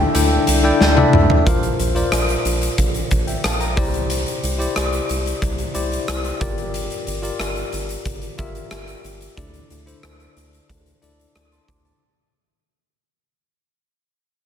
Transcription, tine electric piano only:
0.00 1.48 D3 medium
0.00 0.14 D4 medium
0.00 0.15 E4 medium
0.00 0.15 A4 medium
0.00 0.15 D5 medium
0.00 0.98 E5 medium
0.14 0.50 D4 medium
0.14 0.51 E4 medium
0.14 0.51 A4 medium
0.14 0.51 D5 medium
0.14 0.51 G5 medium
0.63 0.88 D4 medium
0.63 0.88 E4 medium
0.63 0.88 A4 medium
0.63 0.88 D5 medium
0.63 0.88 G5 loud
0.96 1.33 D4 medium
0.96 1.33 E4 medium
0.96 1.33 A4 medium
0.96 1.33 D5 medium
0.96 1.33 E5 loud
1.46 2.41 A#2 medium
1.46 1.82 F4 medium
1.46 1.82 A#4 medium
1.46 1.83 C5 medium
1.46 1.83 F5 medium
1.95 2.80 F4 medium
1.95 2.80 A#4 medium
1.95 2.80 C5 medium
1.95 2.80 D5 medium
3.27 3.44 E5 medium
3.27 3.43 G5 medium
3.44 3.60 F5 medium
3.44 3.60 A5 medium
3.61 3.92 G5 soft
3.61 3.92 A#5 medium
3.76 4.72 C3 medium
3.76 4.42 E4 medium
3.76 4.43 G4 medium
3.76 4.43 C5 medium
3.76 4.43 D5 medium
4.59 5.43 E4 medium
4.59 5.44 G4 medium
4.59 5.44 C5 medium
4.59 5.44 D5 medium
5.74 6.40 E4 medium
5.74 6.39 G4 medium
5.74 6.41 C5 medium
5.74 6.40 D5 medium
6.40 7.36 G2 medium
6.40 7.06 F4 medium
6.40 7.07 G4 medium
6.40 7.07 A#4 medium
6.40 7.07 D5 medium
7.22 8.07 F4 medium
7.22 8.07 G4 medium
7.22 8.07 A#4 medium
7.22 8.08 D5 medium
8.38 9.10 F4 medium
8.38 9.11 G4 medium
8.38 9.11 A#4 medium
8.38 9.11 E5 medium
9.37 10.32 D3 medium
9.37 9.73 D4 medium
9.37 9.73 E4 medium
9.37 9.74 A4 medium
9.37 9.74 D5 medium
9.86 10.71 D4 medium
9.86 10.71 E4 medium
9.86 10.71 A4 medium
9.86 10.71 C5 medium
11.02 11.74 D4 medium
11.02 11.74 E4 medium
11.02 11.75 A4 medium
11.02 11.75 D5 medium
11.35 11.51 A5 medium
11.52 11.68 A5 medium
11.52 11.68 C6 medium
11.69 11.84 D6 medium
11.85 12.16 A5 medium

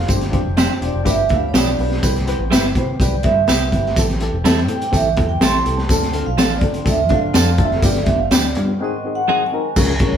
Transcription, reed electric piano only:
0.08 0.78 G2 medium
0.08 0.24 D4 medium
0.08 0.24 F4 medium
0.08 0.24 G4 medium
0.08 0.24 C5 loud
0.32 0.47 D4 medium
0.32 0.48 F4 medium
0.32 0.48 G4 medium
0.32 0.48 C5 medium
0.57 0.72 D4 medium
0.57 0.72 F4 medium
0.57 0.72 G4 medium
0.57 0.73 C5 loud
0.80 0.96 D4 medium
0.80 0.96 F4 medium
0.80 0.96 G4 medium
0.80 0.97 C5 medium
1.05 1.74 G2 medium
1.05 1.20 D4 medium
1.05 1.20 F4 medium
1.05 1.21 G4 medium
1.05 1.21 B4 loud
1.30 1.45 D4 medium
1.30 1.45 F4 medium
1.30 1.45 G4 medium
1.30 1.46 B4 medium
1.54 1.69 D4 medium
1.54 1.70 F4 medium
1.54 1.70 G4 medium
1.54 1.70 B4 medium
1.79 1.94 D4 medium
1.79 1.94 F4 medium
1.79 1.94 G4 medium
1.79 1.95 B4 medium
2.02 2.71 C3 medium
2.02 2.17 C4 loud
2.02 2.17 E4 medium
2.02 2.18 G4 medium
2.02 2.18 B4 loud
2.27 2.42 C4 medium
2.27 2.42 E4 medium
2.27 2.42 G4 medium
2.27 2.43 B4 loud
2.51 2.66 C4 medium
2.51 2.66 E4 medium
2.51 2.67 G4 medium
2.51 2.67 B4 loud
2.76 2.91 C4 medium
2.76 2.91 E4 medium
2.76 2.91 G4 medium
2.76 2.92 B4 medium
3.00 3.15 C4 medium
3.00 3.15 E4 medium
3.00 3.15 G4 medium
3.00 3.16 B4 loud
3.25 3.39 C4 medium
3.25 3.39 E4 medium
3.25 3.39 G4 medium
3.25 3.40 B4 medium
3.48 3.63 C4 medium
3.48 3.63 E4 medium
3.48 3.63 G4 medium
3.48 3.63 B4 medium
3.73 3.87 C4 medium
3.73 3.88 E4 medium
3.73 3.88 G4 medium
3.73 3.88 B4 medium
3.98 4.66 A2 medium
3.98 4.12 C4 loud
3.98 4.12 E4 loud
3.98 4.12 G4 medium
3.98 4.12 A4 loud
4.20 4.35 C4 medium
4.20 4.36 E4 medium
4.20 4.36 G4 medium
4.20 4.36 A4 loud
4.45 4.60 C4 medium
4.45 4.60 E4 medium
4.45 4.60 G4 medium
4.45 4.60 A4 loud
4.68 4.83 C4 medium
4.68 4.83 E4 medium
4.68 4.84 G4 medium
4.68 4.84 A4 medium
4.92 5.07 C4 loud
4.92 5.08 E4 medium
4.92 5.08 G4 medium
4.92 5.08 A4 loud
5.16 5.32 C4 medium
5.16 5.32 E4 medium
5.16 5.32 G4 medium
5.16 5.32 A4 medium
5.40 5.56 C4 medium
5.40 5.56 E4 medium
5.40 5.56 G4 medium
5.40 5.57 A4 medium
5.64 5.80 C4 medium
5.64 5.80 E4 medium
5.64 5.81 G4 medium
5.64 5.81 A4 medium
5.90 6.59 D3 medium
5.90 6.05 C4 loud
5.90 6.05 D4 medium
5.90 6.05 F4 medium
5.90 6.06 A4 loud
6.13 6.28 C4 medium
6.13 6.29 D4 medium
6.13 6.29 F4 medium
6.13 6.29 A4 medium
6.37 6.53 C4 medium
6.37 6.53 D4 medium
6.37 6.53 F4 medium
6.37 6.53 A4 medium
6.62 6.77 C4 medium
6.62 6.77 D4 medium
6.62 6.77 F4 medium
6.62 6.78 A4 medium
6.85 7.01 C4 loud
6.85 7.01 D4 medium
6.85 7.01 F4 medium
6.85 7.01 A4 loud
7.09 7.25 C4 medium
7.09 7.25 D4 medium
7.09 7.26 F4 medium
7.09 7.26 A4 medium
7.34 7.49 C4 medium
7.34 7.49 D4 medium
7.34 7.50 F4 medium
7.34 7.50 A4 medium
7.58 7.73 C4 medium
7.58 7.74 D4 medium
7.58 7.74 F4 medium
7.58 7.74 A4 medium
7.83 8.52 G2 medium
7.83 7.98 B3 loud
7.83 7.98 D4 medium
7.83 7.99 F4 medium
7.83 7.99 G4 loud
8.07 8.22 B3 medium
8.07 8.22 D4 medium
8.07 8.22 F4 medium
8.07 8.23 G4 medium
8.31 8.46 B3 medium
8.31 8.47 D4 medium
8.31 8.47 F4 medium
8.31 8.47 G4 medium
8.57 8.71 B3 medium
8.57 8.71 D4 medium
8.57 8.71 F4 medium
8.57 8.71 G4 medium
8.80 9.49 G#2 medium
8.80 8.95 C4 loud
8.80 8.95 D#4 medium
8.80 8.95 F#4 medium
8.80 8.96 G#4 loud
9.05 9.19 C4 medium
9.05 9.19 D#4 medium
9.05 9.20 F#4 medium
9.05 9.20 G#4 medium
9.28 9.43 C4 medium
9.28 9.43 D#4 medium
9.28 9.43 F#4 medium
9.28 9.44 G#4 medium
9.52 9.67 C4 medium
9.52 9.67 D#4 medium
9.52 9.67 F#4 medium
9.52 9.68 A#4 medium
9.77 10.17 C#3 medium
9.77 9.91 C#4 loud
9.77 9.91 F4 medium
9.77 9.91 G#4 medium
9.77 9.92 A#4 medium
9.77 9.92 C#5 loud
10.00 10.15 C#4 medium
10.00 10.15 F4 medium
10.00 10.15 G#4 medium
10.00 10.15 A#4 medium
10.00 10.16 C#5 medium

